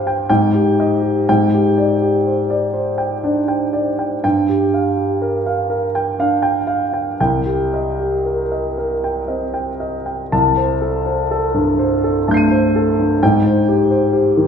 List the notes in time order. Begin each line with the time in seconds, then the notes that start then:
Already playing: G2 G4 C5 F5 G5
0.07 G5
0.29 G#2 G5
0.54 G4
0.80 D#5
1.02 G4
1.29 G#2 G5
1.54 G4
1.78 D5
2.02 G4
2.27 C5
2.50 D5
2.73 C5
2.98 G5
3.24 D4 D5
3.48 G5
3.73 D5
3.99 G5
4.24 G2 G5
4.49 G4
4.74 F5
4.97 G4
5.22 A#4
5.46 F5
5.70 A#4
5.95 G5
6.19 D4 F5
6.42 G5
6.67 F5
6.93 G5
7.20 C2 G5
7.46 G4
7.74 D#5
7.99 G4
8.26 A#4
8.52 D#5
8.78 A#4
9.04 G5
9.28 C4 D#5
9.54 G5
9.80 D#5
10.06 G5
10.32 C2 A5
10.57 C5
10.82 A4
11.06 C5
11.31 A4
11.54 G2
11.79 C5
12.04 A4
12.28 G2 A3 A5 G6
12.34 C7 D#7
12.51 C5
12.76 A4
12.99 G2
13.23 G#2 G5
13.46 C5
13.68 G4
13.91 C5
14.13 G4
14.37 D#3